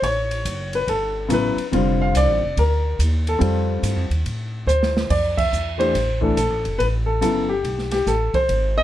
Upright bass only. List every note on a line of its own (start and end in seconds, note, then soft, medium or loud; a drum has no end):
0.02 0.44 A1 medium
0.45 0.86 F#1 medium
0.88 1.29 G1 medium
1.30 1.55 A1 medium
1.56 muted upright bass stroke soft
1.73 2.13 F1 medium
2.15 2.28 C2 medium
2.28 2.41 A1 medium
2.41 2.55 F1 medium
2.57 2.98 D2 medium
2.99 3.40 D#2 medium
3.41 3.82 F2 medium
3.83 3.96 G2 medium
3.96 4.10 F2 medium
4.10 4.24 D#2 medium
4.25 4.66 A2 medium
4.67 5.08 D2 medium
5.10 5.51 F2 medium
5.53 5.94 E2 medium
5.95 6.36 A1 medium
6.37 6.50 A#1 medium
6.50 6.65 A1 soft
6.66 6.79 F1 medium
6.80 7.21 A1 medium
7.22 7.63 G1 medium
7.64 8.05 B1 medium
8.07 8.32 A1 medium
8.34 muted upright bass stroke soft
8.49 8.83 G#1 medium